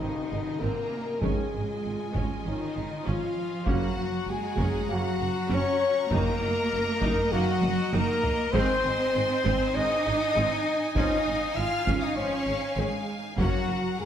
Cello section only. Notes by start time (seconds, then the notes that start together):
0.00 D#3
0.62 A#3
1.23 G#3
2.46 D#3
3.07 F3
3.67 F#3
4.27 G#3
4.89 F#3
5.49 C#4
6.10 A#3
7.33 F#3
7.92 A#3
8.54 C4
9.75 D#4
10.96 D#4
11.57 F4
12.02 D#4
12.17 C#4
12.78 G#3
13.38 F#3
13.99 G#3